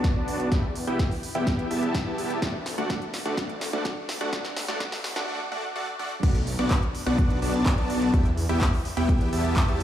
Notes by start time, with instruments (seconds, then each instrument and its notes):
Already playing: detuned saw bass B1, supersaw synth B3 D4 F#4 D5 A5
0.04 kick, snare, closed hi-hat
0.16 detuned saw bass B1, supersaw synth B3 D4 F#4 D5 A5
0.28 open hi-hat
0.40 closed hi-hat
0.52 detuned saw bass E2, kick, snare, closed hi-hat
0.76 open hi-hat
0.87 detuned saw bass E2, supersaw synth B3 E4 G4 E5 G5, closed hi-hat
0.99 kick, snare, closed hi-hat
1.11 open hi-hat
1.23 open hi-hat
1.35 detuned saw bass E2, supersaw synth B3 E4 G4 E5 G5, closed hi-hat
1.47 kick, snare, closed hi-hat
1.59 closed hi-hat
1.71 detuned saw bass E2, supersaw synth B3 E4 G4 E5 A5, open hi-hat
1.83 closed hi-hat
1.95 kick, snare, closed hi-hat
2.06 detuned saw bass E2, supersaw synth B3 E4 G4 E5 A5
2.18 open hi-hat
2.30 closed hi-hat
2.42 detuned saw bass D2, supersaw synth A3 D4 F#4 D5 F#5, kick, snare, closed hi-hat
2.66 snare, open hi-hat
2.78 detuned saw bass D2, supersaw synth A3 D4 F#4 D5 F#5, closed hi-hat
2.90 kick, snare, closed hi-hat
3.02 closed hi-hat
3.14 snare, open hi-hat
3.25 detuned saw bass D2, supersaw synth A3 D4 F#4 D5 F#5, closed hi-hat
3.37 detuned saw bass D2, supersaw synth A3 D4 F#4 F#5, kick, snare, closed hi-hat
3.49 closed hi-hat
3.61 snare, open hi-hat
3.73 detuned saw bass D2, supersaw synth A3 D4 F#4 D5 F#5, closed hi-hat
3.85 kick, snare, closed hi-hat
4.09 snare, open hi-hat
4.21 detuned saw bass D2, supersaw synth A3 D4 F#4 D5 F#5
4.33 detuned saw bass G1, supersaw synth F#4, kick, snare, closed hi-hat
4.45 snare
4.57 snare, open hi-hat
4.68 detuned saw bass G1, supersaw synth A3 D4 F#4 D5 F#5, snare, closed hi-hat
4.80 detuned saw bass G1, supersaw synth A3 D4 F#4 D5 F#5, kick, snare, closed hi-hat
4.92 snare, open hi-hat
5.04 snare, open hi-hat
5.16 detuned saw bass G1, supersaw synth A3 D4 F#4 D5 F#5, snare, closed hi-hat
5.28 supersaw synth A3 D4 F#4 D5 F#5
5.52 supersaw synth A3 D4 F#4 D5 F#5
5.76 supersaw synth A3 D4 F#4 D5 F#5
5.99 supersaw synth A3 D4 F#4 D5 F#5
6.23 detuned saw bass B1, supersaw synth B3 D4 F#4 D5 F#5, kick, closed hi-hat, crash
6.35 closed hi-hat
6.47 open hi-hat
6.59 detuned saw bass B1, supersaw synth B3 D4 F#4 D5 F#5, closed hi-hat
6.71 kick, clap, closed hi-hat
6.83 closed hi-hat
6.95 open hi-hat
7.06 detuned saw bass B1, supersaw synth B3 D4 F#4 D5 F#5, closed hi-hat
7.18 kick, closed hi-hat
7.30 closed hi-hat
7.42 detuned saw bass B1, supersaw synth B3 D4 F#4 D5 A5, open hi-hat
7.54 closed hi-hat
7.66 kick, clap, closed hi-hat
7.78 detuned saw bass B1, supersaw synth B3 D4 F#4 D5 A5, closed hi-hat
7.90 open hi-hat
8.02 closed hi-hat
8.14 detuned saw bass E2, supersaw synth B3 E4 G4 E5 G5, kick, closed hi-hat
8.26 closed hi-hat
8.37 open hi-hat
8.49 detuned saw bass E2, supersaw synth B3 E4 G4 E5 G5, closed hi-hat
8.61 kick, clap, closed hi-hat
8.73 open hi-hat
8.85 open hi-hat
8.97 detuned saw bass E2, supersaw synth B3 E4 G4 E5 G5, closed hi-hat
9.09 kick, closed hi-hat
9.21 closed hi-hat
9.33 detuned saw bass E2, supersaw synth B3 E4 G4 E5 A5, open hi-hat
9.45 closed hi-hat
9.56 kick, clap, closed hi-hat
9.68 detuned saw bass E2, supersaw synth B3 E4 G4 E5 A5, closed hi-hat